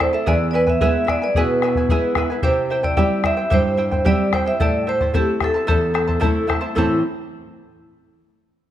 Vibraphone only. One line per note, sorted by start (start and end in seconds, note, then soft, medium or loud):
0.01 0.14 C5 medium
0.14 0.27 E5 medium
0.28 0.39 D5 medium
0.51 0.54 D5 medium
0.55 0.69 B4 medium
0.70 0.81 E5 medium
0.82 1.04 E5 medium
1.05 1.08 E5 medium
1.10 1.22 D5 medium
1.24 1.36 D5 medium
1.39 2.15 B4 medium
2.43 2.82 C5 medium
2.84 3.26 D5 medium
3.26 3.53 E5 medium
3.54 4.03 C5 medium
4.06 4.31 D5 medium
4.34 4.46 C5 medium
4.48 4.61 E5 medium
4.62 4.86 D5 medium
4.89 5.13 C5 medium
5.17 5.43 G4 medium
5.44 6.46 A4 medium
6.76 7.01 E4 medium